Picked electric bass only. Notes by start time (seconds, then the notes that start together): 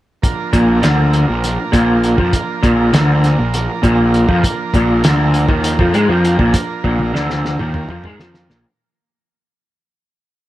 0.53 A#1
0.84 D2
1.29 A#1
1.73 A#1
2.18 F2
2.64 A#1
2.94 D2
3.39 A#1
3.84 A#1
4.29 F2
4.74 A#1
5.04 D2
5.49 D#2
5.79 F2
5.95 G#2
6.09 F2
6.40 A#1
6.85 A#1
7.15 D2
7.59 D#2
7.90 F2
8.05 G#2
8.19 F2
8.50 A#1